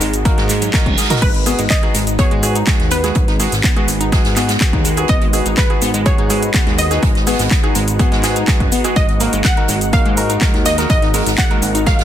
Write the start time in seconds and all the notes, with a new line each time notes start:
Already playing: G#3 D#4 F#4 G#4 A#4
0.00 G#1 G#3, closed hi-hat, open hi-hat, shaker
0.14 closed hi-hat, shaker
0.25 A#3 D#4 F#4 A#4, kick, closed hi-hat, reverse cymbal, shaker
0.38 G#2 G#3, snare, closed hi-hat
0.49 G#3, clap, closed hi-hat, open hi-hat, shaker
0.61 F#3, closed hi-hat, shaker
0.73 G#3 D#4 F#4 A#4, kick, snare, clap, closed hi-hat, high tom, shaker
0.86 F#1, kick, closed hi-hat, high tom
0.97 G#4, snare, closed hi-hat, open hi-hat, shaker
1.04 snare, closed hi-hat
1.10 D#4 F#4 A#4, snare, closed hi-hat, mid tom, shaker
1.16 snare, closed hi-hat
1.22 G#1 G#3 D#4 F#4 B4, kick, closed hi-hat, crash, shaker
1.35 closed hi-hat
1.46 B3 F#4 G#4, closed hi-hat, open hi-hat, shaker
1.59 G#1 G#3, closed hi-hat, shaker
1.70 D#5, kick, snare, clap, closed hi-hat, shaker
1.83 B3 D#4 F#4 G#4, closed hi-hat
1.94 G#1 G#3, snare, closed hi-hat, open hi-hat, shaker
2.07 closed hi-hat, shaker
2.19 B3 F#4 G#4 C#5, kick, closed hi-hat, shaker
2.31 G#2 G#3, closed hi-hat
2.43 B3 F#4 G#4, closed hi-hat, open hi-hat, shaker
2.55 D#4, closed hi-hat, shaker
2.66 G#3 B3 F#4 G#4, kick, snare, clap, closed hi-hat, shaker
2.80 D#2, snare, closed hi-hat
2.90 B3 B4, snare, closed hi-hat, open hi-hat, shaker
3.04 G#3 B3 F#4 G#4, snare, closed hi-hat, shaker
3.15 G#1, kick, closed hi-hat, shaker
3.28 D#4, snare, closed hi-hat
3.39 G#3 B3 F#4 G#4, snare, open hi-hat, shaker
3.52 G#1, snare, closed hi-hat, shaker
3.63 B3, kick, snare, clap, closed hi-hat, shaker
3.76 G#3 B3 F#4 G#4, closed hi-hat
3.88 G#1, closed hi-hat, open hi-hat, shaker
4.01 D#4, closed hi-hat, shaker
4.12 G#3 B3 F#4 G#4, kick, snare, closed hi-hat, shaker
4.25 G#2, snare, closed hi-hat
4.36 B3 F#4 G#4, snare, clap, closed hi-hat, open hi-hat, shaker
4.48 G#3, snare, closed hi-hat, shaker
4.61 B3 F#4 G#4, kick, snare, clap, closed hi-hat, shaker
4.73 D#2 D#4, kick, closed hi-hat
4.85 G#3, closed hi-hat, open hi-hat, shaker
4.97 B3 F#4 G#4, closed hi-hat, shaker
5.08 G#1 B3 D#5, kick, closed hi-hat, shaker
5.22 G#3, closed hi-hat
5.33 B3 F#4 G#4, closed hi-hat, open hi-hat, shaker
5.46 G#1 D#4, closed hi-hat, shaker
5.57 G#3 B4, kick, snare, clap, closed hi-hat, shaker
5.70 B3 F#4 G#4, closed hi-hat
5.82 G#1 B3, snare, closed hi-hat, open hi-hat, shaker
5.94 G#3, closed hi-hat, shaker
6.06 B3 F#4 G#4 C#5, kick, closed hi-hat, shaker
6.18 G#2 D#4, closed hi-hat
6.30 G#3 B3 F#4 G#4, closed hi-hat, open hi-hat, shaker
6.43 closed hi-hat, shaker
6.54 B3 F#4 G#4, kick, snare, clap, closed hi-hat, shaker
6.67 D#2 G#3, snare, closed hi-hat
6.78 D#5, snare, closed hi-hat, open hi-hat, shaker
6.91 B3 D#4 F#4 G#4, snare, closed hi-hat, shaker
7.03 G#1 G#3, kick, closed hi-hat, shaker
7.15 snare, closed hi-hat
7.26 B3 F#4 G#4, snare, open hi-hat, shaker
7.39 G#1 G#3, snare, closed hi-hat, shaker
7.51 kick, snare, clap, closed hi-hat, shaker
7.63 B3 D#4 F#4 G#4, closed hi-hat
7.75 G#1 G#3, closed hi-hat, open hi-hat, shaker
7.88 closed hi-hat, shaker
7.99 B3 F#4 G#4, kick, closed hi-hat, shaker
8.12 G#2 G#3, snare, closed hi-hat
8.23 B3 F#4 G#4, snare, clap, closed hi-hat, open hi-hat, shaker
8.36 D#4, closed hi-hat, shaker
8.48 G#3 B3 F#4 G#4, kick, snare, clap, closed hi-hat, shaker
8.60 F#1, kick, closed hi-hat
8.72 B3, closed hi-hat, open hi-hat, shaker
8.84 G#3 B3 F#4 G#4, closed hi-hat, shaker
8.96 G#1 G#3 A#4 D#5, kick, closed hi-hat, shaker
9.09 closed hi-hat
9.20 A#3 D#4 F#4 A#4, closed hi-hat, open hi-hat, shaker
9.33 G#1 G#3, closed hi-hat, shaker
9.44 F#5, kick, snare, clap, closed hi-hat, shaker
9.57 D#4 F#4 A#4, closed hi-hat
9.68 G#1 G#3, snare, closed hi-hat, open hi-hat, shaker
9.81 closed hi-hat, shaker
9.93 A#3 D#4 F#4 A#4 F5, kick, closed hi-hat, shaker
10.05 G#2 G#3, closed hi-hat
10.17 D#4 F#4 A#4, closed hi-hat, open hi-hat, shaker
10.30 D#4, closed hi-hat, shaker
10.41 G#3 D#4 F#4 A#4, kick, snare, clap, closed hi-hat, shaker
10.54 D#2, snare, closed hi-hat
10.66 A#3 D#5, snare, closed hi-hat, open hi-hat, shaker
10.78 G#3 D#4 F#4 A#4, snare, closed hi-hat, shaker
10.90 G#1 D#5, kick, closed hi-hat, shaker
11.02 D#4, snare, closed hi-hat
11.14 G#3 D#4 F#4 A#4, snare, open hi-hat, shaker
11.26 G#1, snare, closed hi-hat, shaker
11.38 A#3 F#5, kick, snare, clap, closed hi-hat, shaker
11.51 G#3 D#4 F#4 A#4, closed hi-hat
11.62 G#1, closed hi-hat, open hi-hat, shaker
11.75 D#4, closed hi-hat, shaker
11.86 G#3 D#4 F#4 A#4 F5, kick, snare, closed hi-hat, shaker
11.99 G#2, snare, closed hi-hat